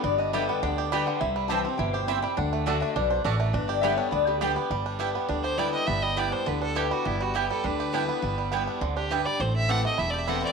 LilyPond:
<<
  \new Staff \with { instrumentName = "Resonator guitar played with a steel bar" } { \time 4/4 \key g \major \tempo 4 = 205 d''8 ees''8 e''8 fis''8 g''4. fis''8 | e''4 a''8 fis''8 g''8 c''8 e''8 g''8 | fis''4. e''8 d''8 c''8 b'8 bes'8 | b'8 d''8 e''8 cis''8 d''8 g'8 r4 |
r1 | r1 | r1 | r1 |
r1 | }
  \new Staff \with { instrumentName = "Fiddle" } { \time 4/4 \key g \major r1 | r1 | r1 | r1 |
r2 r8 c''8 d''8 ees''8 | e''8 ees''8 d''8 c''8 b'8 a'8 g'8 fis'8 | e'8 fis'8 g'8 a'8 b'2~ | b'4 r4. g'8 b'8 d''8 |
c''8 e''8 fis''8 ees''8 \tuplet 3/2 { e''8 d''8 e''8 } fis''8 d''8 | }
  \new Staff \with { instrumentName = "Mandolin" } { \time 4/4 \key g \major r4 <b g' d'' g''>8 r4. <b g' d'' g''>8 r8 | r4 <c' e' c'' g''>8 r4. <c' e' c'' g''>8 r8 | r4 <a fis' d'' a''>8 r4. <a fis' d'' a''>8 r8 | r4 <b g' d'' g''>8 r4. <b g' d'' g''>8 r8 |
r4 <b e' b' g''>8 r4. <b e' b' g''>8 r8 | r4 <b e' b' g''>8 r4. <b e' b' g''>8 r8 | r4 <b e' b' g''>8 r4. <b e' b' g''>8 r8 | r4 <b e' b' g''>8 r4. <b e' b' g''>8 r8 |
r4 <c' e' c'' a''>8 r4. <c' e' c'' a''>8 r8 | }
  \new Staff \with { instrumentName = "Five-string banjo" } { \time 4/4 \key g \major <g b>8 d'8 g8 b8 d'8 g'8 g8 d8 | e'8 g8 g'8 c'8 e'8 g'8 e'8 g8 | d'8 a8 d'8 d'8 d'8 d'8 d'8 a8 | d'8 g'8 b8 d'8 b8 g8 g'8 b8 |
g8 d'8 g'8 b8 d'8 g'8 g8 d'8 | b8 g8 b8 d'8 d8 d'8 g'8 g8 | b8 g8 g'8 g8 d'8 g'8 d'8 b8 | b8 g8 b8 d'8 d8 d'8 g'8 g8 |
c'4 g'8 a8 e'8 g'8 e'8 c'8 | }
  \new Staff \with { instrumentName = "Steel-string acoustic guitar" } { \clef bass \time 4/4 \key g \major << { r4 <d g b g'>4 r4 <d g b g'>4 | r4 <e g c' e'>8 <c' e'>8 r2 | r4 <d a d' fis'>4 r2 | r4 <d g b g'>4 r4 <d g b g'>8 <b g'>8 |
r4 <g b e'>4 r4 <g b e'>4 | r4 <g b e'>4 r4 <g b e'>4 | r4 <g b e'>4 r4 <g b e'>8 <b e'>8 | r4 <g b e'>4 r2 |
r4 <e a c' e'>8 <c' e'>8 r4 <e a c' e'>4 | } \\ { g,2 d2 | c2 b,4 c4 | d2 b,4 a,4 | g,2 d2 |
g2 d2 | g2 d2 | g2 d2 | g2 c4 g,4 |
a,2 e,2 | } >> }
  \new Staff \with { instrumentName = "Upright bass" } { \clef bass \time 4/4 \key g \major g,,2 d,2 | c,2 g,,2 | d,2 b,,4 a,,4 | g,,2 d,2 |
g,,2 d,2 | g,,2 d,2 | g,,2 d,2 | g,,2 d,2 |
a,,2 e,,2 | }
>>